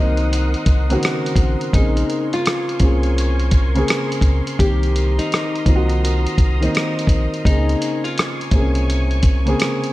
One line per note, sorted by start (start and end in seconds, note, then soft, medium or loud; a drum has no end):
0.00 0.55 C2 medium
0.00 0.95 D#3 medium
0.00 0.90 A#3 medium
0.00 0.92 C4 medium
0.00 0.58 D#4 medium
0.00 1.70 D#4 medium
0.00 0.93 F#4 medium
0.00 9.93 A#4 medium
0.00 1.71 F#5 medium
0.00 9.93 C6 medium
0.00 1.71 D#6 medium
0.17 closed hi-hat soft
0.33 closed hi-hat medium
0.54 closed hi-hat soft
0.66 0.97 C2 medium
0.66 kick medium
0.66 closed hi-hat medium
0.89 0.94 C#3 medium
0.89 1.43 A#3 medium
0.89 1.44 C4 medium
0.89 1.44 F#4 loud
0.89 closed hi-hat soft
0.95 1.46 D#3 medium
1.03 cross-stick loud
1.03 closed hi-hat medium
1.26 closed hi-hat medium
1.36 1.56 A#1 loud
1.36 kick medium
1.36 closed hi-hat medium
1.61 closed hi-hat soft
1.72 2.04 A#1 loud
1.72 2.42 C#3 medium
1.72 2.43 A#3 medium
1.72 2.44 C4 medium
1.72 2.29 D#4 medium
1.72 2.44 G#4 medium
1.72 4.57 G#5 medium
1.72 4.57 C#6 medium
1.72 kick loud
1.72 closed hi-hat medium
1.97 closed hi-hat soft
2.10 closed hi-hat medium
2.33 4.07 F4 medium
2.33 closed hi-hat soft
2.46 cross-stick loud
2.46 closed hi-hat medium
2.69 closed hi-hat soft
2.80 3.84 C2 medium
2.80 3.42 A#3 medium
2.80 3.43 C4 medium
2.80 3.41 C#4 medium
2.80 kick medium
2.80 closed hi-hat medium
2.84 3.43 G#4 medium
3.03 closed hi-hat soft
3.18 closed hi-hat medium
3.40 closed hi-hat soft
3.51 kick medium
3.51 closed hi-hat medium
3.75 4.28 C#3 medium
3.75 4.29 A#3 medium
3.75 4.29 C4 medium
3.75 4.30 G#4 loud
3.75 closed hi-hat soft
3.88 cross-stick loud
3.88 closed hi-hat medium
4.12 closed hi-hat medium
4.21 4.42 C#2 medium
4.21 kick medium
4.21 closed hi-hat medium
4.47 closed hi-hat soft
4.59 5.20 C2 loud
4.59 5.29 D#3 medium
4.59 5.29 A#3 medium
4.59 5.30 C4 medium
4.59 5.14 G4 medium
4.59 5.30 G4 medium
4.59 7.42 A#5 medium
4.59 7.42 D#6 medium
4.59 kick medium
4.59 closed hi-hat medium
4.83 closed hi-hat soft
4.96 closed hi-hat medium
5.19 7.41 D#4 medium
5.19 closed hi-hat soft
5.32 cross-stick medium
5.32 closed hi-hat medium
5.56 closed hi-hat soft
5.65 6.27 C2 medium
5.65 6.27 D#3 medium
5.65 6.28 A#3 medium
5.65 6.28 C4 medium
5.65 5.76 F4 medium
5.65 kick medium
5.65 closed hi-hat medium
5.76 6.32 F#4 medium
5.90 closed hi-hat soft
6.05 closed hi-hat medium
6.27 closed hi-hat soft
6.38 6.68 C2 medium
6.38 kick medium
6.38 closed hi-hat medium
6.60 7.14 D#3 medium
6.60 7.15 A#3 medium
6.60 7.15 C4 medium
6.60 7.16 D#4 loud
6.60 closed hi-hat soft
6.75 cross-stick loud
6.75 closed hi-hat medium
6.99 closed hi-hat medium
7.07 7.27 A#1 loud
7.07 kick medium
7.07 closed hi-hat medium
7.34 closed hi-hat soft
7.45 7.75 C#2 loud
7.45 8.14 C#3 medium
7.45 8.15 A#3 medium
7.45 8.16 C4 medium
7.45 8.04 D#4 medium
7.45 8.16 G#4 medium
7.45 9.93 G#5 medium
7.45 9.93 C#6 medium
7.45 kick loud
7.45 closed hi-hat medium
7.69 closed hi-hat soft
7.82 closed hi-hat medium
8.04 9.78 F4 medium
8.04 closed hi-hat soft
8.18 cross-stick loud
8.18 closed hi-hat medium
8.41 closed hi-hat soft
8.51 9.55 C2 medium
8.51 8.60 C3 medium
8.51 9.13 A#3 medium
8.51 9.14 C4 medium
8.51 9.15 G#4 medium
8.51 kick medium
8.51 closed hi-hat medium
8.58 9.16 C#4 medium
8.75 closed hi-hat soft
8.90 closed hi-hat medium
9.11 closed hi-hat soft
9.23 kick medium
9.23 closed hi-hat medium
9.45 9.93 C#3 medium
9.45 9.93 A#3 medium
9.45 9.93 C4 medium
9.45 9.93 G#4 loud
9.45 closed hi-hat soft
9.60 cross-stick loud
9.60 closed hi-hat medium
9.84 closed hi-hat medium